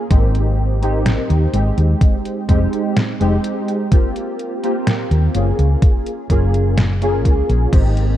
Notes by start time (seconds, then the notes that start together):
0.10 G#1 A#3 C4 D#4 G4, kick, closed hi-hat
0.35 closed hi-hat
0.82 A#3 C4 D#4 G4, closed hi-hat
1.06 snare, closed hi-hat
1.30 D#2, closed hi-hat
1.53 G#1 G#3 C4 D#4 G4, closed hi-hat
1.78 D#2, closed hi-hat
2.01 kick, closed hi-hat
2.25 closed hi-hat
2.48 F1 G#3 C4 D#4 G4, kick, closed hi-hat
2.73 closed hi-hat
2.97 snare, closed hi-hat
3.20 F1 G#3 C4 D#4 G4, closed hi-hat
3.44 closed hi-hat
3.68 closed hi-hat
3.91 A#3 C4 F4 G4, kick, closed hi-hat
4.16 closed hi-hat
4.39 closed hi-hat
4.63 A#3 C4 F4 G4, closed hi-hat
4.87 snare, closed hi-hat
5.11 D#2, closed hi-hat
5.34 F#1 A#3 C#4 F4 G#4, closed hi-hat
5.59 C#2, closed hi-hat
5.82 kick, closed hi-hat
6.06 closed hi-hat
6.29 F#1 A#3 C#4 F4 G#4, kick, closed hi-hat
6.54 closed hi-hat
6.78 snare, closed hi-hat
7.01 A#3 C#4 F4 G#4, closed hi-hat
7.25 C#2, kick, closed hi-hat
7.49 A#1, closed hi-hat
7.72 G#1 A#3 C4 D#4 G4, kick, closed hi-hat, crash
7.97 closed hi-hat